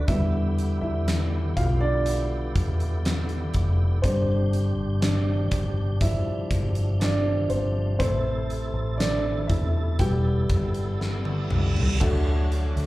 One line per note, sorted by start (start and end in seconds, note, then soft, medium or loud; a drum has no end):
0.00 0.10 D4 medium
0.07 0.79 E2 medium
0.07 3.99 D3 medium
0.07 4.00 D3 soft
0.07 4.00 G3 soft
0.07 3.99 B3 medium
0.07 4.01 B3 medium
0.07 3.99 E4 medium
0.07 0.79 E4 medium
0.07 3.99 G4 medium
0.07 0.80 E5 medium
0.07 kick medium
0.07 closed hi-hat medium
0.58 closed hi-hat medium
0.81 1.52 E2 medium
0.81 1.53 E4 medium
0.81 1.52 E5 medium
1.08 snare loud
1.08 closed hi-hat medium
1.56 2.51 B1 medium
1.56 1.81 F4 medium
1.56 1.79 F5 medium
1.56 kick medium
1.56 closed hi-hat medium
1.81 3.51 D4 medium
1.81 3.50 D5 medium
2.06 closed hi-hat medium
2.56 3.50 E2 medium
2.56 kick medium
2.56 closed hi-hat medium
2.80 closed hi-hat soft
3.05 snare loud
3.05 closed hi-hat medium
3.29 closed hi-hat soft
3.54 4.01 F1 medium
3.54 kick medium
3.54 closed hi-hat medium
4.02 4.74 G1 loud
4.02 7.96 C3 medium
4.02 5.48 D3 medium
4.02 7.96 G3 medium
4.02 5.48 G3 soft
4.02 4.99 C4 medium
4.02 7.96 D4 medium
4.02 5.99 G4 medium
4.02 4.98 C5 medium
4.02 kick medium
4.02 closed hi-hat medium
4.53 closed hi-hat medium
4.77 5.47 G1 medium
5.01 5.98 D4 medium
5.01 5.96 D5 medium
5.01 snare loud
5.01 closed hi-hat loud
5.51 6.22 G1 medium
5.51 kick medium
5.51 closed hi-hat medium
6.01 7.98 F3 medium
6.01 6.98 E4 medium
6.01 7.04 E5 medium
6.01 kick medium
6.01 closed hi-hat medium
6.50 7.46 G1 medium
6.50 kick medium
6.50 closed hi-hat medium
6.75 closed hi-hat medium
7.00 7.48 D4 medium
7.00 7.52 D5 medium
7.00 snare loud
7.00 closed hi-hat medium
7.49 7.96 G1 medium
7.49 7.97 C4 medium
7.49 7.97 C5 medium
7.49 closed hi-hat medium
7.99 8.70 A1 medium
7.99 9.45 C3 medium
7.99 9.98 C3 medium
7.99 9.46 A3 soft
7.99 9.98 A3 medium
7.99 8.96 C4 medium
7.99 11.97 E4 medium
7.99 11.98 A4 medium
7.99 9.46 B4 medium
7.99 9.02 C5 medium
7.99 kick loud
7.99 closed hi-hat medium
8.50 closed hi-hat soft
8.74 9.45 A1 medium
8.98 9.46 D4 medium
8.98 9.50 D5 medium
8.98 snare loud
8.98 closed hi-hat medium
9.47 9.96 E2 loud
9.47 9.96 E4 medium
9.47 10.00 E5 medium
9.47 kick medium
9.47 closed hi-hat medium
9.99 10.46 E1 loud
9.99 11.97 E3 soft
9.99 11.99 G3 medium
9.99 11.98 G3 soft
9.99 11.99 B3 medium
9.99 11.98 B3 medium
9.99 11.48 G4 medium
9.99 11.47 G5 medium
9.99 kick medium
9.99 closed hi-hat medium
9.99 reverse cymbal medium
10.49 11.47 G1 medium
10.49 kick medium
10.49 closed hi-hat medium
10.74 closed hi-hat soft
11.01 snare medium
11.25 high tom medium
11.50 11.98 C2 medium
11.50 mid tom medium
11.77 floor tom medium
12.00 12.73 D2 medium
12.00 12.86 D3 medium
12.00 12.86 F#3 medium
12.00 12.86 A3 medium
12.00 12.86 D4 medium
12.00 12.86 F#4 medium
12.00 12.86 A4 medium
12.00 kick medium
12.00 crash medium
12.00 impact medium
12.52 closed hi-hat medium
12.77 12.86 D2 medium
12.77 closed hi-hat soft